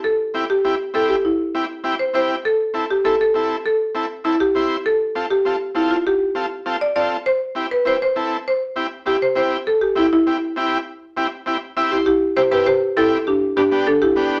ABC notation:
X:1
M:4/4
L:1/8
Q:1/4=200
K:C
V:1 name="Marimba"
A3 G3 A G | E4 z c c2 | A3 G A A3 | A4 E G2 z |
A3 G3 E F | G4 z d d2 | c3 B c c3 | c4 G c c2 |
A G E E4- E- | E6 z [EG] | [EG]2 [Gc] [GB] [Gc]2 [EA]2 | [DG]2 [DG]2 [DA] [EG]2 z |]
V:2 name="Transistor combo organ"
z2 [CEG] z [CEG] z [CEG] z | z2 [CEG] z [CEG] z [CEG] z | z2 [CEA] z [CEA] z [CEA] z | z2 [CEA] z [CEA] z [CEc] z |
z2 [CFA] z [CFA] z [CFA] z | z2 [CFA] z [CFA] z [CFA] z | z2 [CEG] z [CEG] z [CEA] z | z2 [CEG] z [CEG] z [CEG] z |
z2 [CEG] z [CEG] z [CEG] z | z2 [CEG] z [CEG] z [CEGe] c | z2 [CEG] [CEG] z2 [CEG] z | z2 [B,DG] [B,DG] z2 [B,DG] z |]